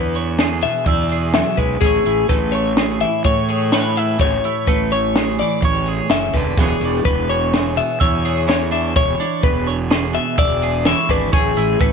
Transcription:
Already playing: fingered electric bass E2, clean electric guitar E3 B3 D4 B4 C#5
0.15 clean electric guitar C#5, closed hi-hat
0.38 clean electric guitar G#4, snare, closed hi-hat
0.62 clean electric guitar B2 E5, closed hi-hat
0.86 fingered electric bass E2, clean electric guitar D5 E5, kick, closed hi-hat
1.09 clean electric guitar G#4, closed hi-hat
1.33 clean electric guitar F#3 E5, snare, closed hi-hat
1.57 fingered electric bass B1, clean electric guitar G#3 B4, kick, closed hi-hat
1.81 fingered electric bass A1, clean electric guitar A2 A3 E4 G#4, kick, closed hi-hat
1.85 clean electric guitar G#4 C#5
2.05 fingered electric bass A1, clean electric guitar E4, closed hi-hat
2.29 fingered electric bass A1, clean electric guitar A3 B4, kick, snare, closed hi-hat
2.52 clean electric guitar C#5, closed hi-hat
2.77 clean electric guitar G#4, snare, closed hi-hat
3.00 clean electric guitar E3 E5, closed hi-hat
3.24 fingered electric bass A2, clean electric guitar C#5, kick, closed hi-hat
3.49 clean electric guitar G#4, closed hi-hat
3.72 clean electric guitar A2 B4 C#5, snare, closed hi-hat
3.96 clean electric guitar E4 E5, closed hi-hat
4.19 fingered electric bass A1, clean electric guitar A2 C#5, kick, closed hi-hat
4.44 clean electric guitar E4, closed hi-hat
4.67 fingered electric bass A1, clean electric guitar A3 B4, kick, closed hi-hat
4.92 clean electric guitar C#5, closed hi-hat
5.15 clean electric guitar G#4, snare, closed hi-hat
5.39 clean electric guitar E3 D5, closed hi-hat
5.62 fingered electric bass A1, clean electric guitar C#5, kick, closed hi-hat
5.86 clean electric guitar G#4, closed hi-hat
6.09 fingered electric bass F#1, clean electric guitar C#3 E5, snare, closed hi-hat
6.33 fingered electric bass E1, clean electric guitar D3 B4, kick, snare, closed hi-hat
6.58 fingered electric bass E1, clean electric guitar E3 B3 D4 G#4, kick, closed hi-hat
6.62 clean electric guitar G#4 C#5
6.81 fingered electric bass E1, clean electric guitar D4, closed hi-hat
7.05 fingered electric bass E1, clean electric guitar B3 B4, kick, closed hi-hat
7.29 clean electric guitar C#5, closed hi-hat
7.53 clean electric guitar G#4, snare, closed hi-hat
7.76 clean electric guitar B2 E5, closed hi-hat
8.00 fingered electric bass E2, clean electric guitar C#5 E5, kick, closed hi-hat
8.25 clean electric guitar G#4, closed hi-hat
8.47 clean electric guitar E3 C#5, snare, closed hi-hat
8.71 clean electric guitar D4 E5, closed hi-hat
8.96 fingered electric bass E1, clean electric guitar E3 C#5, kick, closed hi-hat
9.20 clean electric guitar D4, closed hi-hat
9.43 fingered electric bass E1, clean electric guitar B3 B4, kick, closed hi-hat
9.67 clean electric guitar C#5, closed hi-hat
9.91 clean electric guitar G#4, snare, closed hi-hat
10.13 clean electric guitar B2 E5, closed hi-hat
10.38 fingered electric bass E1, clean electric guitar D5 E5, kick, closed hi-hat
10.62 clean electric guitar G#4, closed hi-hat
10.85 clean electric guitar E3 C#5 E5, snare, closed hi-hat
11.09 fingered electric bass G#1, clean electric guitar D4 B4, kick, closed hi-hat
11.32 fingered electric bass A1, clean electric guitar A2 G#4 C#5, kick, closed hi-hat
11.56 fingered electric bass A1, clean electric guitar E4, closed hi-hat
11.80 fingered electric bass A1, clean electric guitar A3 B4, kick, closed hi-hat

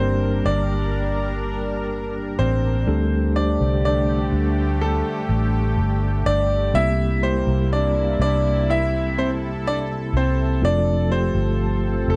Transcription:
Already playing: fingered electric bass G1, tine electric piano G2 G3 A#3 D4 G4 A#4, analog synth pad G3 D4 A#4, grand piano C4 C5
0.45 fingered electric bass G1, grand piano D4 D5
2.39 fingered electric bass A1, grand piano C4 C5
2.86 fingered electric bass D2, analog synth pad D3 A3 G4, tine electric piano D3 G3 A3 D4 G4 A4
3.36 tine electric piano G3 A3 D4 G4 C5, grand piano D4 D5
3.60 fingered electric bass C2
3.85 grand piano D4 D5
4.32 fingered electric bass D2
4.81 grand piano A3 A4
5.29 fingered electric bass A1
5.77 fingered electric bass G1
6.26 fingered electric bass G1, grand piano D4 D5
6.74 fingered electric bass C2, tine electric piano C3 G3 A#3 C4 E4 G4, analog synth pad C3 A#3 E4, grand piano E4 E5
7.22 tine electric piano G3 A#3 C4 E4 G4, grand piano C4 C5
7.47 fingered electric bass C2
7.73 grand piano D4 D5
8.19 fingered electric bass C2, grand piano D4 D5
8.69 grand piano E4 E5, analog synth pad A4
9.18 grand piano C4 C5
9.67 grand piano D4 D5
10.14 fingered electric bass C2, grand piano C4 C5
10.61 fingered electric bass F1, tine electric piano F3 A3 C4 F4 A4, analog synth pad F3 C4 A4, grand piano D4 D5
11.10 tine electric piano F3 A3 C4 F4 G4, grand piano C4 C5
11.34 fingered electric bass G1
12.08 fingered electric bass F1, grand piano A3 A4

